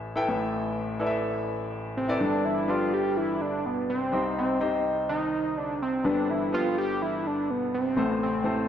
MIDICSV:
0, 0, Header, 1, 3, 480
1, 0, Start_track
1, 0, Key_signature, 1, "major"
1, 0, Tempo, 480000
1, 286, Time_signature, 4, 2, 24, 8
1, 8682, End_track
2, 0, Start_track
2, 0, Title_t, "Grand piano"
2, 0, Program_c, 0, 0
2, 0, Control_c, 0, 64, 127
2, 0, Note_on_c, 0, 33, 71
2, 0, Note_on_c, 0, 45, 74
2, 0, Note_on_c, 0, 64, 88
2, 0, Note_on_c, 0, 69, 80
2, 0, Note_on_c, 0, 71, 78
2, 0, Note_on_c, 0, 76, 100
2, 156, Note_off_c, 0, 64, 0
2, 156, Note_on_c, 0, 64, 95
2, 159, Note_off_c, 0, 69, 0
2, 159, Note_on_c, 0, 69, 88
2, 164, Note_off_c, 0, 71, 0
2, 164, Note_on_c, 0, 71, 83
2, 168, Note_on_c, 0, 79, 102
2, 246, Note_off_c, 0, 33, 0
2, 246, Note_off_c, 0, 45, 0
2, 248, Note_off_c, 0, 64, 0
2, 250, Note_off_c, 0, 69, 0
2, 252, Note_off_c, 0, 71, 0
2, 254, Note_off_c, 0, 79, 0
2, 279, Note_on_c, 0, 64, 86
2, 284, Note_on_c, 0, 33, 73
2, 284, Note_on_c, 0, 45, 77
2, 285, Note_on_c, 0, 69, 77
2, 287, Note_on_c, 0, 71, 74
2, 291, Note_off_c, 0, 76, 0
2, 291, Note_on_c, 0, 76, 92
2, 806, Note_off_c, 0, 64, 0
2, 809, Note_off_c, 0, 69, 0
2, 811, Note_off_c, 0, 71, 0
2, 813, Note_off_c, 0, 76, 0
2, 995, Note_on_c, 0, 64, 90
2, 998, Note_on_c, 0, 69, 85
2, 1003, Note_on_c, 0, 71, 81
2, 1006, Note_on_c, 0, 74, 81
2, 1063, Note_off_c, 0, 74, 0
2, 1065, Note_on_c, 0, 76, 100
2, 1699, Note_off_c, 0, 64, 0
2, 1701, Note_off_c, 0, 69, 0
2, 1703, Note_off_c, 0, 71, 0
2, 1734, Note_off_c, 0, 76, 0
2, 2081, Note_on_c, 0, 64, 90
2, 2086, Note_on_c, 0, 69, 80
2, 2087, Note_on_c, 0, 71, 85
2, 2094, Note_on_c, 0, 74, 102
2, 2165, Note_off_c, 0, 33, 0
2, 2165, Note_off_c, 0, 45, 0
2, 2171, Note_off_c, 0, 64, 0
2, 2173, Note_off_c, 0, 69, 0
2, 2174, Note_off_c, 0, 71, 0
2, 2177, Note_off_c, 0, 74, 0
2, 2201, Note_on_c, 0, 62, 76
2, 2205, Note_on_c, 0, 67, 70
2, 2206, Note_on_c, 0, 31, 67
2, 2207, Note_on_c, 0, 43, 66
2, 2208, Note_on_c, 0, 69, 68
2, 2209, Note_on_c, 0, 71, 70
2, 2217, Control_c, 0, 64, 0
2, 2413, Control_c, 0, 64, 127
2, 2553, Note_off_c, 0, 62, 0
2, 2555, Note_off_c, 0, 67, 0
2, 2556, Note_off_c, 0, 69, 0
2, 2557, Note_off_c, 0, 71, 0
2, 2679, Note_on_c, 0, 62, 80
2, 2683, Note_on_c, 0, 67, 73
2, 2685, Note_on_c, 0, 69, 74
2, 2688, Note_on_c, 0, 71, 76
2, 2691, Note_on_c, 0, 74, 84
2, 3381, Note_off_c, 0, 62, 0
2, 3383, Note_off_c, 0, 67, 0
2, 3384, Note_off_c, 0, 69, 0
2, 3386, Note_off_c, 0, 71, 0
2, 3387, Note_off_c, 0, 74, 0
2, 4086, Note_off_c, 0, 31, 0
2, 4086, Note_off_c, 0, 43, 0
2, 4119, Note_on_c, 0, 60, 82
2, 4123, Note_on_c, 0, 63, 70
2, 4125, Note_on_c, 0, 67, 70
2, 4126, Note_on_c, 0, 36, 68
2, 4126, Note_on_c, 0, 48, 67
2, 4128, Note_on_c, 0, 72, 68
2, 4131, Note_on_c, 0, 75, 81
2, 4139, Control_c, 0, 64, 0
2, 4296, Control_c, 0, 64, 127
2, 4472, Note_off_c, 0, 60, 0
2, 4474, Note_off_c, 0, 63, 0
2, 4475, Note_off_c, 0, 67, 0
2, 4476, Note_off_c, 0, 72, 0
2, 4478, Note_off_c, 0, 75, 0
2, 4599, Note_on_c, 0, 60, 82
2, 4601, Note_on_c, 0, 63, 75
2, 4606, Note_on_c, 0, 67, 73
2, 4607, Note_on_c, 0, 72, 70
2, 4610, Note_on_c, 0, 75, 92
2, 5301, Note_off_c, 0, 60, 0
2, 5302, Note_off_c, 0, 63, 0
2, 5304, Note_off_c, 0, 67, 0
2, 5305, Note_off_c, 0, 72, 0
2, 5307, Note_off_c, 0, 75, 0
2, 6006, Note_off_c, 0, 36, 0
2, 6006, Note_off_c, 0, 48, 0
2, 6042, Note_on_c, 0, 59, 81
2, 6043, Note_on_c, 0, 62, 73
2, 6044, Note_on_c, 0, 31, 67
2, 6046, Note_on_c, 0, 43, 70
2, 6046, Note_on_c, 0, 67, 71
2, 6050, Note_on_c, 0, 69, 72
2, 6051, Note_on_c, 0, 71, 85
2, 6060, Control_c, 0, 64, 0
2, 6213, Control_c, 0, 64, 127
2, 6393, Note_off_c, 0, 59, 0
2, 6394, Note_off_c, 0, 62, 0
2, 6396, Note_off_c, 0, 67, 0
2, 6397, Note_off_c, 0, 69, 0
2, 6398, Note_off_c, 0, 71, 0
2, 6524, Note_on_c, 0, 59, 82
2, 6528, Note_on_c, 0, 62, 72
2, 6531, Note_on_c, 0, 67, 73
2, 6533, Note_on_c, 0, 69, 77
2, 6537, Note_on_c, 0, 71, 87
2, 7224, Note_off_c, 0, 59, 0
2, 7226, Note_off_c, 0, 62, 0
2, 7227, Note_off_c, 0, 67, 0
2, 7228, Note_off_c, 0, 69, 0
2, 7230, Note_off_c, 0, 71, 0
2, 7925, Note_off_c, 0, 31, 0
2, 7926, Note_off_c, 0, 43, 0
2, 7963, Note_on_c, 0, 57, 77
2, 7964, Note_on_c, 0, 60, 66
2, 7967, Note_on_c, 0, 33, 69
2, 7967, Note_on_c, 0, 45, 67
2, 7968, Note_on_c, 0, 64, 66
2, 7972, Note_on_c, 0, 69, 69
2, 7974, Note_on_c, 0, 72, 86
2, 7980, Control_c, 0, 64, 0
2, 8156, Control_c, 0, 64, 127
2, 8314, Note_off_c, 0, 57, 0
2, 8314, Note_off_c, 0, 60, 0
2, 8316, Note_off_c, 0, 64, 0
2, 8318, Note_off_c, 0, 69, 0
2, 8319, Note_off_c, 0, 72, 0
2, 8439, Note_on_c, 0, 57, 80
2, 8442, Note_on_c, 0, 60, 71
2, 8447, Note_on_c, 0, 64, 68
2, 8448, Note_on_c, 0, 69, 70
2, 8451, Note_on_c, 0, 72, 85
2, 8682, Note_off_c, 0, 33, 0
2, 8682, Note_off_c, 0, 45, 0
2, 8682, Note_off_c, 0, 57, 0
2, 8682, Note_off_c, 0, 60, 0
2, 8682, Note_off_c, 0, 64, 0
2, 8682, Note_off_c, 0, 69, 0
2, 8682, Note_off_c, 0, 72, 0
2, 8682, End_track
3, 0, Start_track
3, 0, Title_t, "Analog synth lead"
3, 0, Program_c, 1, 81
3, 1972, Note_on_c, 1, 60, 92
3, 2207, Note_on_c, 1, 62, 108
3, 2222, Note_off_c, 1, 60, 0
3, 2450, Note_on_c, 1, 64, 104
3, 2465, Note_off_c, 1, 62, 0
3, 2697, Note_on_c, 1, 65, 107
3, 2712, Note_off_c, 1, 64, 0
3, 2935, Note_on_c, 1, 67, 111
3, 2950, Note_off_c, 1, 65, 0
3, 3170, Note_on_c, 1, 64, 113
3, 3186, Note_off_c, 1, 67, 0
3, 3413, Note_on_c, 1, 62, 102
3, 3428, Note_off_c, 1, 64, 0
3, 3659, Note_on_c, 1, 59, 99
3, 3674, Note_off_c, 1, 62, 0
3, 3892, Note_off_c, 1, 59, 0
3, 3896, Note_on_c, 1, 60, 104
3, 4338, Note_off_c, 1, 60, 0
3, 4382, Note_on_c, 1, 60, 84
3, 4821, Note_off_c, 1, 60, 0
3, 5090, Note_on_c, 1, 63, 105
3, 5574, Note_on_c, 1, 62, 98
3, 5589, Note_off_c, 1, 63, 0
3, 5810, Note_off_c, 1, 62, 0
3, 5823, Note_on_c, 1, 60, 97
3, 6060, Note_on_c, 1, 62, 110
3, 6076, Note_off_c, 1, 60, 0
3, 6300, Note_on_c, 1, 64, 100
3, 6315, Note_off_c, 1, 62, 0
3, 6533, Note_off_c, 1, 64, 0
3, 6542, Note_on_c, 1, 65, 108
3, 6757, Note_off_c, 1, 65, 0
3, 6781, Note_on_c, 1, 67, 111
3, 7020, Note_on_c, 1, 64, 108
3, 7035, Note_off_c, 1, 67, 0
3, 7269, Note_on_c, 1, 62, 100
3, 7284, Note_off_c, 1, 64, 0
3, 7505, Note_on_c, 1, 59, 99
3, 7520, Note_off_c, 1, 62, 0
3, 7735, Note_off_c, 1, 59, 0
3, 7743, Note_on_c, 1, 60, 101
3, 8181, Note_off_c, 1, 60, 0
3, 8229, Note_on_c, 1, 60, 88
3, 8664, Note_off_c, 1, 60, 0
3, 8682, End_track
0, 0, End_of_file